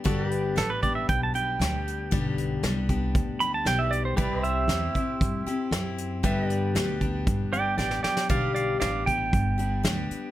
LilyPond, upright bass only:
\new Staff \with { instrumentName = "Upright bass" } { \clef bass \time 4/4 \key g \major \tempo 4 = 116 g,,4 a,,4 b,,4 d,4 | b,,4 c,4 d,4 b,,4 | c,4 e,8 r8 g,8 r8 fis,4 | g,4 d,4 g,,4 a,,8 r8 |
b,,4 a,,4 g,,4 d,8 r8 | }